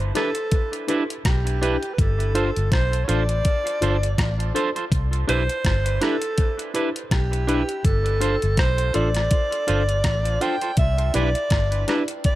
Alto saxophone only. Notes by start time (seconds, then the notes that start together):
Already playing: C5
0.17 A4
1.27 G4
1.94 B4
2.00 A4
2.73 C5
3.04 C#5
3.10 D5
5.29 C5
6.03 A4
7.13 G4
7.85 A4
8.59 C5
8.96 D5
10.42 G5
10.79 E5
11.15 D5
12.26 D5